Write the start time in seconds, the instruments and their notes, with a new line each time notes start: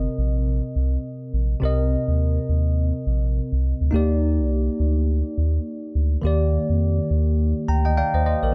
Already playing: tine electric piano C3 C4 A#4 D#5
0.18 analog synth bass A#1
0.76 analog synth bass C2
1.34 analog synth bass A#1
1.60 analog synth bass C2, tine electric piano C3 C4 A#4
1.65 tine electric piano D#5
2.08 analog synth bass D#2
2.49 analog synth bass D#2
3.07 analog synth bass A#1
3.52 analog synth bass C2
3.81 analog synth bass D2
3.91 analog synth bass D#2, tine electric piano A#3 D#4 G4
3.96 tine electric piano D5
4.39 analog synth bass C2
4.80 analog synth bass D2
5.38 analog synth bass D#2
5.95 analog synth bass D2
6.22 analog synth bass D#2, tine electric piano D#3 A#3 G4
6.27 tine electric piano D5
6.70 analog synth bass F2
7.11 analog synth bass D#2
7.68 analog synth bass D2, tine electric piano G5 A#5
7.85 tine electric piano D#5 G5
7.97 tine electric piano D5 F5 G5
8.14 analog synth bass D#2, tine electric piano C5 D#5
8.26 tine electric piano C5 D#5
8.43 analog synth bass A#1, tine electric piano A#4 D5